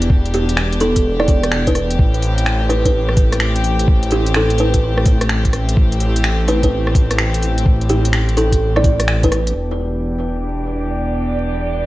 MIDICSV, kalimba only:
0, 0, Header, 1, 2, 480
1, 0, Start_track
1, 0, Key_signature, 1, "minor"
1, 0, Tempo, 472441
1, 103, Time_signature, 4, 2, 24, 8
1, 12050, End_track
2, 0, Start_track
2, 0, Title_t, "Kalimba"
2, 0, Program_c, 0, 108
2, 350, Note_on_c, 0, 67, 93
2, 570, Note_off_c, 0, 67, 0
2, 822, Note_on_c, 0, 69, 91
2, 1078, Note_off_c, 0, 69, 0
2, 1217, Note_on_c, 0, 74, 90
2, 1467, Note_off_c, 0, 74, 0
2, 1700, Note_on_c, 0, 71, 91
2, 2085, Note_off_c, 0, 71, 0
2, 2737, Note_on_c, 0, 71, 89
2, 2841, Note_off_c, 0, 71, 0
2, 2904, Note_on_c, 0, 71, 78
2, 2955, Note_off_c, 0, 71, 0
2, 4187, Note_on_c, 0, 67, 94
2, 4408, Note_off_c, 0, 67, 0
2, 4431, Note_on_c, 0, 69, 91
2, 4650, Note_off_c, 0, 69, 0
2, 4674, Note_on_c, 0, 71, 95
2, 5066, Note_off_c, 0, 71, 0
2, 6588, Note_on_c, 0, 71, 92
2, 6686, Note_off_c, 0, 71, 0
2, 6748, Note_on_c, 0, 71, 77
2, 6797, Note_off_c, 0, 71, 0
2, 8024, Note_on_c, 0, 67, 96
2, 8247, Note_off_c, 0, 67, 0
2, 8507, Note_on_c, 0, 69, 95
2, 8760, Note_off_c, 0, 69, 0
2, 8907, Note_on_c, 0, 74, 95
2, 9152, Note_off_c, 0, 74, 0
2, 9387, Note_on_c, 0, 71, 94
2, 9706, Note_off_c, 0, 71, 0
2, 12050, End_track
0, 0, End_of_file